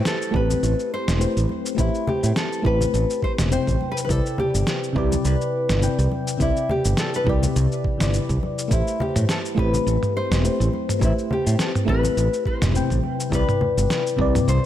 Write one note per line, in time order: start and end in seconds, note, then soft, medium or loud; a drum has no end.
0.00 0.30 A3 medium
0.00 0.31 E4 medium
0.00 0.31 G4 medium
0.00 0.32 B4 medium
0.00 0.33 C5 medium
0.05 0.35 A4 medium
0.05 snare medium
0.05 cabasa medium
0.22 cabasa soft
0.31 0.53 A1 medium
0.31 1.16 A3 medium
0.31 1.17 E4 medium
0.31 1.17 G4 medium
0.31 kick loud
0.35 1.19 C4 loud
0.35 1.18 B4 medium
0.35 0.93 B4 medium
0.50 high conga medium
0.50 low conga medium
0.50 cabasa medium
0.63 0.73 A1 medium
0.63 cabasa medium
0.80 cabasa soft
0.94 1.47 C5 medium
1.08 1.25 E1 medium
1.08 snare medium
1.08 cabasa medium
1.19 1.74 A3 medium
1.19 1.75 E4 medium
1.19 1.75 G4 medium
1.19 1.75 B4 medium
1.19 1.76 C5 medium
1.19 cabasa medium
1.37 1.45 A1 medium
1.37 cabasa soft
1.49 high conga medium
1.66 cabasa medium
1.75 1.88 A1 medium
1.75 2.60 A3 medium
1.75 2.61 E4 medium
1.75 2.62 G4 medium
1.75 kick loud
1.75 cabasa medium
1.79 2.09 E4 medium
1.79 2.62 B4 medium
1.79 2.63 C5 medium
1.95 cabasa soft
2.07 2.38 G4 medium
2.07 low conga loud
2.23 2.31 A2 medium
2.23 cabasa medium
2.36 2.66 A4 medium
2.36 snare medium
2.36 cabasa medium
2.53 cabasa soft
2.62 2.84 A1 medium
2.62 3.47 A3 medium
2.62 3.48 E4 medium
2.62 3.49 G4 medium
2.62 3.23 B4 loud
2.62 kick loud
2.66 3.50 C4 medium
2.66 3.49 B4 medium
2.81 low conga medium
2.81 cabasa medium
2.94 3.04 A1 medium
2.94 cabasa medium
3.10 cabasa soft
3.22 3.32 C5 loud
3.22 kick medium
3.38 3.56 E1 medium
3.38 snare medium
3.38 high conga medium
3.38 low conga medium
3.38 cabasa medium
3.50 4.06 C3 medium
3.50 4.06 C4 medium
3.50 4.06 E4 medium
3.50 4.06 C5 medium
3.50 3.88 C5 loud
3.50 4.07 G5 medium
3.50 cabasa medium
3.67 3.76 A1 medium
3.67 kick medium
3.67 cabasa soft
3.81 high conga medium
3.92 3.97 B4 medium
3.97 cabasa medium
4.05 4.92 C3 medium
4.05 4.11 B4 medium
4.09 4.19 C2 medium
4.09 4.92 C4 medium
4.09 4.93 E4 medium
4.09 4.39 A4 loud
4.09 4.94 B4 medium
4.09 4.94 D5 medium
4.09 kick loud
4.09 cabasa medium
4.26 cabasa soft
4.38 4.97 G4 loud
4.38 low conga medium
4.55 4.62 G1 medium
4.55 cabasa medium
4.67 snare medium
4.67 cabasa medium
4.84 cabasa soft
4.93 5.15 C2 medium
4.93 5.78 C3 medium
4.93 5.79 C4 medium
4.93 5.79 E4 medium
4.93 5.80 B4 medium
4.93 kick loud
4.98 5.27 G4 medium
4.98 5.80 D5 loud
5.12 high conga medium
5.12 low conga medium
5.12 cabasa medium
5.25 5.35 C2 medium
5.25 6.08 B4 medium
5.25 cabasa medium
5.41 cabasa soft
5.69 5.86 G1 medium
5.69 snare medium
5.69 cabasa medium
5.81 6.36 C3 medium
5.81 6.37 C4 medium
5.81 6.37 E4 medium
5.81 6.37 B4 medium
5.81 6.38 G5 medium
5.81 cabasa medium
5.99 6.07 C2 medium
5.99 cabasa soft
6.11 high conga medium
6.28 cabasa medium
6.37 6.50 C2 medium
6.37 7.22 C3 medium
6.37 7.23 C4 medium
6.37 7.23 E4 medium
6.37 7.24 B4 medium
6.37 kick loud
6.37 cabasa medium
6.42 6.71 E4 medium
6.42 7.25 D5 medium
6.57 cabasa soft
6.69 7.00 G4 medium
6.69 low conga medium
6.85 6.93 G1 medium
6.85 cabasa medium
6.97 7.15 A4 medium
6.97 snare medium
6.97 cabasa medium
7.14 7.27 B4 loud
7.14 cabasa soft
7.24 7.46 C2 loud
7.24 7.96 C3 medium
7.24 7.97 C4 medium
7.24 7.97 E4 medium
7.24 7.98 B4 medium
7.24 kick loud
7.29 8.39 G4 medium
7.29 7.99 D5 medium
7.43 low conga medium
7.43 cabasa medium
7.56 7.66 C2 medium
7.56 cabasa medium
7.72 cabasa soft
7.84 kick medium
7.97 8.17 G1 medium
7.97 8.66 C3 medium
7.97 8.67 C4 medium
7.97 8.68 E4 medium
7.97 snare medium
7.97 high conga medium
7.97 low conga medium
7.97 cabasa medium
8.02 8.68 B4 medium
8.02 8.69 D5 medium
8.14 cabasa medium
8.29 8.37 C2 medium
8.29 kick medium
8.29 cabasa soft
8.43 high conga medium
8.59 cabasa medium
8.68 8.81 A1 medium
8.68 9.53 A3 medium
8.68 9.54 E4 medium
8.68 9.54 G4 medium
8.68 9.55 B4 medium
8.68 kick loud
8.68 cabasa medium
8.72 9.01 E4 medium
8.72 9.56 C5 medium
8.88 cabasa soft
9.00 9.30 G4 medium
9.00 low conga medium
9.16 9.24 A2 medium
9.16 mid tom medium
9.16 cabasa medium
9.29 9.38 A4 medium
9.29 snare medium
9.29 cabasa medium
9.45 cabasa soft
9.55 9.77 A1 medium
9.55 10.40 A3 medium
9.55 10.40 E4 medium
9.55 10.41 G4 medium
9.55 10.41 B4 medium
9.55 kick loud
9.59 10.42 C4 loud
9.59 10.16 B4 medium
9.74 high conga medium
9.74 low conga medium
9.74 cabasa medium
9.87 9.96 A1 medium
9.87 cabasa medium
10.03 mid tom medium
10.03 cabasa soft
10.17 10.70 C5 loud
10.31 10.48 E1 medium
10.31 snare medium
10.31 cabasa medium
10.43 10.98 A3 medium
10.43 10.99 E4 medium
10.43 10.99 G4 medium
10.43 10.99 B4 medium
10.43 10.99 C5 medium
10.43 cabasa medium
10.60 10.68 A1 medium
10.60 cabasa soft
10.73 high conga medium
10.89 mid tom medium
10.89 cabasa medium
10.99 11.12 A1 medium
10.99 11.84 A3 medium
10.99 11.85 E4 medium
10.99 11.85 G4 medium
10.99 11.86 B4 medium
10.99 kick loud
10.99 cabasa medium
11.04 11.12 E4 medium
11.04 11.87 C5 medium
11.19 cabasa soft
11.31 11.61 G4 medium
11.31 low conga medium
11.47 11.55 A2 medium
11.47 cabasa medium
11.59 11.69 A4 medium
11.59 snare medium
11.59 cabasa medium
11.75 mid tom medium
11.75 cabasa soft
11.85 12.07 A1 loud
11.85 12.70 A3 medium
11.85 12.71 E4 medium
11.85 12.72 G4 medium
11.85 12.46 B4 loud
11.85 kick loud
11.89 12.73 C4 loud
11.89 12.72 B4 medium
12.03 low conga medium
12.03 cabasa medium
12.17 12.27 A1 medium
12.17 cabasa medium
12.33 cabasa soft
12.46 13.00 C5 medium
12.46 kick medium
12.62 12.79 E1 medium
12.62 snare medium
12.62 mid tom medium
12.62 high conga medium
12.62 low conga medium
12.62 cabasa medium
12.73 13.29 C3 medium
12.73 13.29 C4 medium
12.73 13.29 E4 medium
12.73 13.30 B4 medium
12.73 13.30 G5 medium
12.73 cabasa medium
12.90 12.99 A1 medium
12.90 kick medium
12.90 cabasa soft
13.03 high conga medium
13.20 cabasa medium
13.30 13.42 C2 medium
13.30 14.15 C3 medium
13.30 14.15 C4 medium
13.30 14.16 E4 medium
13.30 14.17 B4 medium
13.30 kick loud
13.30 cabasa medium
13.35 14.45 B4 loud
13.35 14.17 D5 medium
13.49 mid tom medium
13.49 cabasa soft
13.61 low conga medium
13.77 13.85 G1 medium
13.77 cabasa medium
13.90 snare medium
13.90 cabasa soft
14.07 cabasa soft
14.16 14.38 C2 loud
14.16 14.66 C3 medium
14.16 14.66 C4 medium
14.16 14.66 E4 medium
14.16 14.66 B4 medium
14.16 kick medium
14.21 14.66 D5 loud
14.35 mid tom medium
14.35 high conga medium
14.35 low conga medium
14.35 cabasa medium
14.48 14.58 C2 medium
14.48 14.66 C5 loud
14.48 cabasa medium